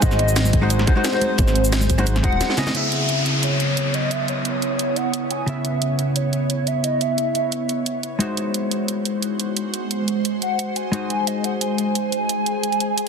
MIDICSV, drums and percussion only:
0, 0, Header, 1, 2, 480
1, 0, Start_track
1, 0, Key_signature, 4, "minor"
1, 0, Tempo, 340909
1, 31, Time_signature, 4, 2, 24, 8
1, 18424, End_track
2, 0, Start_track
2, 0, Title_t, "Drums"
2, 30, Note_on_c, 9, 36, 117
2, 31, Note_on_c, 9, 42, 94
2, 31, Note_on_c, 9, 82, 54
2, 158, Note_off_c, 9, 82, 0
2, 158, Note_on_c, 9, 40, 33
2, 158, Note_on_c, 9, 82, 30
2, 171, Note_off_c, 9, 36, 0
2, 172, Note_off_c, 9, 42, 0
2, 269, Note_on_c, 9, 60, 70
2, 270, Note_on_c, 9, 42, 69
2, 299, Note_off_c, 9, 40, 0
2, 299, Note_off_c, 9, 82, 0
2, 398, Note_on_c, 9, 82, 62
2, 409, Note_off_c, 9, 60, 0
2, 411, Note_off_c, 9, 42, 0
2, 510, Note_off_c, 9, 82, 0
2, 510, Note_on_c, 9, 38, 112
2, 510, Note_on_c, 9, 42, 95
2, 510, Note_on_c, 9, 82, 50
2, 634, Note_on_c, 9, 63, 86
2, 637, Note_off_c, 9, 82, 0
2, 637, Note_on_c, 9, 82, 65
2, 650, Note_off_c, 9, 38, 0
2, 650, Note_off_c, 9, 42, 0
2, 745, Note_on_c, 9, 60, 49
2, 749, Note_on_c, 9, 42, 69
2, 751, Note_on_c, 9, 36, 59
2, 775, Note_off_c, 9, 63, 0
2, 777, Note_off_c, 9, 82, 0
2, 885, Note_off_c, 9, 60, 0
2, 890, Note_off_c, 9, 42, 0
2, 892, Note_off_c, 9, 36, 0
2, 989, Note_on_c, 9, 42, 97
2, 989, Note_on_c, 9, 82, 53
2, 1117, Note_on_c, 9, 60, 69
2, 1118, Note_on_c, 9, 40, 35
2, 1130, Note_off_c, 9, 42, 0
2, 1130, Note_off_c, 9, 82, 0
2, 1230, Note_on_c, 9, 42, 71
2, 1231, Note_on_c, 9, 36, 105
2, 1257, Note_off_c, 9, 60, 0
2, 1259, Note_off_c, 9, 40, 0
2, 1371, Note_off_c, 9, 42, 0
2, 1372, Note_off_c, 9, 36, 0
2, 1471, Note_on_c, 9, 38, 115
2, 1471, Note_on_c, 9, 42, 97
2, 1471, Note_on_c, 9, 82, 53
2, 1594, Note_on_c, 9, 60, 53
2, 1612, Note_off_c, 9, 38, 0
2, 1612, Note_off_c, 9, 42, 0
2, 1612, Note_off_c, 9, 82, 0
2, 1710, Note_on_c, 9, 42, 70
2, 1710, Note_on_c, 9, 63, 68
2, 1735, Note_off_c, 9, 60, 0
2, 1850, Note_off_c, 9, 63, 0
2, 1851, Note_off_c, 9, 42, 0
2, 1946, Note_on_c, 9, 60, 85
2, 1951, Note_on_c, 9, 42, 100
2, 1951, Note_on_c, 9, 82, 53
2, 1952, Note_on_c, 9, 36, 116
2, 2078, Note_off_c, 9, 82, 0
2, 2078, Note_on_c, 9, 40, 34
2, 2078, Note_on_c, 9, 82, 29
2, 2087, Note_off_c, 9, 60, 0
2, 2092, Note_off_c, 9, 42, 0
2, 2093, Note_off_c, 9, 36, 0
2, 2189, Note_on_c, 9, 42, 69
2, 2218, Note_off_c, 9, 40, 0
2, 2218, Note_off_c, 9, 82, 0
2, 2315, Note_on_c, 9, 82, 61
2, 2330, Note_off_c, 9, 42, 0
2, 2429, Note_off_c, 9, 82, 0
2, 2429, Note_on_c, 9, 38, 115
2, 2429, Note_on_c, 9, 42, 96
2, 2429, Note_on_c, 9, 82, 49
2, 2436, Note_on_c, 9, 60, 54
2, 2547, Note_on_c, 9, 63, 85
2, 2556, Note_off_c, 9, 42, 0
2, 2556, Note_off_c, 9, 82, 0
2, 2556, Note_on_c, 9, 42, 40
2, 2556, Note_on_c, 9, 82, 63
2, 2570, Note_off_c, 9, 38, 0
2, 2576, Note_off_c, 9, 60, 0
2, 2669, Note_off_c, 9, 42, 0
2, 2669, Note_off_c, 9, 82, 0
2, 2669, Note_on_c, 9, 42, 72
2, 2669, Note_on_c, 9, 82, 29
2, 2672, Note_on_c, 9, 36, 61
2, 2688, Note_off_c, 9, 63, 0
2, 2791, Note_on_c, 9, 60, 71
2, 2797, Note_off_c, 9, 42, 0
2, 2797, Note_on_c, 9, 42, 39
2, 2810, Note_off_c, 9, 82, 0
2, 2812, Note_off_c, 9, 36, 0
2, 2910, Note_off_c, 9, 42, 0
2, 2910, Note_on_c, 9, 42, 101
2, 2910, Note_on_c, 9, 82, 51
2, 2932, Note_off_c, 9, 60, 0
2, 3039, Note_off_c, 9, 42, 0
2, 3039, Note_on_c, 9, 40, 38
2, 3039, Note_on_c, 9, 42, 39
2, 3051, Note_off_c, 9, 82, 0
2, 3151, Note_off_c, 9, 42, 0
2, 3151, Note_on_c, 9, 36, 106
2, 3151, Note_on_c, 9, 42, 69
2, 3180, Note_off_c, 9, 40, 0
2, 3272, Note_on_c, 9, 63, 60
2, 3275, Note_on_c, 9, 60, 52
2, 3292, Note_off_c, 9, 36, 0
2, 3292, Note_off_c, 9, 42, 0
2, 3389, Note_on_c, 9, 38, 63
2, 3389, Note_on_c, 9, 42, 100
2, 3389, Note_on_c, 9, 82, 52
2, 3413, Note_off_c, 9, 63, 0
2, 3415, Note_off_c, 9, 60, 0
2, 3518, Note_off_c, 9, 38, 0
2, 3518, Note_on_c, 9, 38, 63
2, 3530, Note_off_c, 9, 42, 0
2, 3530, Note_off_c, 9, 82, 0
2, 3621, Note_on_c, 9, 60, 73
2, 3627, Note_on_c, 9, 63, 63
2, 3630, Note_off_c, 9, 38, 0
2, 3630, Note_on_c, 9, 38, 89
2, 3630, Note_on_c, 9, 42, 72
2, 3630, Note_on_c, 9, 82, 30
2, 3752, Note_off_c, 9, 63, 0
2, 3752, Note_on_c, 9, 63, 68
2, 3757, Note_off_c, 9, 38, 0
2, 3757, Note_off_c, 9, 82, 0
2, 3757, Note_on_c, 9, 38, 84
2, 3757, Note_on_c, 9, 82, 27
2, 3761, Note_off_c, 9, 60, 0
2, 3771, Note_off_c, 9, 42, 0
2, 3869, Note_on_c, 9, 42, 84
2, 3893, Note_off_c, 9, 63, 0
2, 3897, Note_off_c, 9, 38, 0
2, 3897, Note_off_c, 9, 82, 0
2, 4009, Note_off_c, 9, 42, 0
2, 4109, Note_on_c, 9, 42, 64
2, 4250, Note_off_c, 9, 42, 0
2, 4348, Note_on_c, 9, 42, 85
2, 4489, Note_off_c, 9, 42, 0
2, 4588, Note_on_c, 9, 42, 65
2, 4729, Note_off_c, 9, 42, 0
2, 4828, Note_on_c, 9, 42, 89
2, 4969, Note_off_c, 9, 42, 0
2, 5069, Note_on_c, 9, 42, 64
2, 5210, Note_off_c, 9, 42, 0
2, 5309, Note_on_c, 9, 42, 90
2, 5450, Note_off_c, 9, 42, 0
2, 5548, Note_on_c, 9, 42, 64
2, 5689, Note_off_c, 9, 42, 0
2, 5787, Note_on_c, 9, 42, 85
2, 5928, Note_off_c, 9, 42, 0
2, 6030, Note_on_c, 9, 42, 60
2, 6171, Note_off_c, 9, 42, 0
2, 6267, Note_on_c, 9, 42, 83
2, 6408, Note_off_c, 9, 42, 0
2, 6509, Note_on_c, 9, 42, 60
2, 6649, Note_off_c, 9, 42, 0
2, 6749, Note_on_c, 9, 42, 84
2, 6890, Note_off_c, 9, 42, 0
2, 6989, Note_on_c, 9, 42, 62
2, 7130, Note_off_c, 9, 42, 0
2, 7231, Note_on_c, 9, 42, 84
2, 7371, Note_off_c, 9, 42, 0
2, 7470, Note_on_c, 9, 42, 63
2, 7611, Note_off_c, 9, 42, 0
2, 7710, Note_on_c, 9, 42, 82
2, 7851, Note_off_c, 9, 42, 0
2, 7950, Note_on_c, 9, 42, 61
2, 8091, Note_off_c, 9, 42, 0
2, 8191, Note_on_c, 9, 42, 82
2, 8331, Note_off_c, 9, 42, 0
2, 8431, Note_on_c, 9, 42, 61
2, 8571, Note_off_c, 9, 42, 0
2, 8670, Note_on_c, 9, 42, 83
2, 8810, Note_off_c, 9, 42, 0
2, 8911, Note_on_c, 9, 42, 58
2, 9052, Note_off_c, 9, 42, 0
2, 9149, Note_on_c, 9, 42, 83
2, 9290, Note_off_c, 9, 42, 0
2, 9391, Note_on_c, 9, 42, 59
2, 9531, Note_off_c, 9, 42, 0
2, 9629, Note_on_c, 9, 42, 81
2, 9770, Note_off_c, 9, 42, 0
2, 9870, Note_on_c, 9, 42, 57
2, 10011, Note_off_c, 9, 42, 0
2, 10110, Note_on_c, 9, 42, 80
2, 10250, Note_off_c, 9, 42, 0
2, 10349, Note_on_c, 9, 42, 59
2, 10489, Note_off_c, 9, 42, 0
2, 10590, Note_on_c, 9, 42, 80
2, 10731, Note_off_c, 9, 42, 0
2, 10830, Note_on_c, 9, 42, 58
2, 10971, Note_off_c, 9, 42, 0
2, 11071, Note_on_c, 9, 42, 82
2, 11211, Note_off_c, 9, 42, 0
2, 11311, Note_on_c, 9, 42, 59
2, 11452, Note_off_c, 9, 42, 0
2, 11551, Note_on_c, 9, 42, 82
2, 11692, Note_off_c, 9, 42, 0
2, 11790, Note_on_c, 9, 42, 58
2, 11930, Note_off_c, 9, 42, 0
2, 12029, Note_on_c, 9, 42, 80
2, 12170, Note_off_c, 9, 42, 0
2, 12270, Note_on_c, 9, 42, 58
2, 12411, Note_off_c, 9, 42, 0
2, 12508, Note_on_c, 9, 42, 84
2, 12649, Note_off_c, 9, 42, 0
2, 12749, Note_on_c, 9, 42, 58
2, 12890, Note_off_c, 9, 42, 0
2, 12989, Note_on_c, 9, 42, 82
2, 13129, Note_off_c, 9, 42, 0
2, 13229, Note_on_c, 9, 42, 58
2, 13370, Note_off_c, 9, 42, 0
2, 13468, Note_on_c, 9, 42, 82
2, 13609, Note_off_c, 9, 42, 0
2, 13709, Note_on_c, 9, 42, 60
2, 13850, Note_off_c, 9, 42, 0
2, 13950, Note_on_c, 9, 42, 82
2, 14091, Note_off_c, 9, 42, 0
2, 14191, Note_on_c, 9, 42, 62
2, 14332, Note_off_c, 9, 42, 0
2, 14432, Note_on_c, 9, 42, 84
2, 14572, Note_off_c, 9, 42, 0
2, 14671, Note_on_c, 9, 42, 61
2, 14812, Note_off_c, 9, 42, 0
2, 14912, Note_on_c, 9, 42, 85
2, 15052, Note_off_c, 9, 42, 0
2, 15151, Note_on_c, 9, 42, 60
2, 15292, Note_off_c, 9, 42, 0
2, 15392, Note_on_c, 9, 42, 87
2, 15533, Note_off_c, 9, 42, 0
2, 15632, Note_on_c, 9, 42, 61
2, 15773, Note_off_c, 9, 42, 0
2, 15872, Note_on_c, 9, 42, 85
2, 16013, Note_off_c, 9, 42, 0
2, 16111, Note_on_c, 9, 42, 65
2, 16252, Note_off_c, 9, 42, 0
2, 16350, Note_on_c, 9, 42, 88
2, 16491, Note_off_c, 9, 42, 0
2, 16592, Note_on_c, 9, 42, 62
2, 16732, Note_off_c, 9, 42, 0
2, 16830, Note_on_c, 9, 42, 86
2, 16971, Note_off_c, 9, 42, 0
2, 17070, Note_on_c, 9, 42, 65
2, 17211, Note_off_c, 9, 42, 0
2, 17309, Note_on_c, 9, 42, 90
2, 17450, Note_off_c, 9, 42, 0
2, 17549, Note_on_c, 9, 42, 62
2, 17690, Note_off_c, 9, 42, 0
2, 17790, Note_on_c, 9, 42, 85
2, 17916, Note_off_c, 9, 42, 0
2, 17916, Note_on_c, 9, 42, 37
2, 18029, Note_off_c, 9, 42, 0
2, 18029, Note_on_c, 9, 42, 67
2, 18169, Note_off_c, 9, 42, 0
2, 18270, Note_on_c, 9, 42, 90
2, 18410, Note_off_c, 9, 42, 0
2, 18424, End_track
0, 0, End_of_file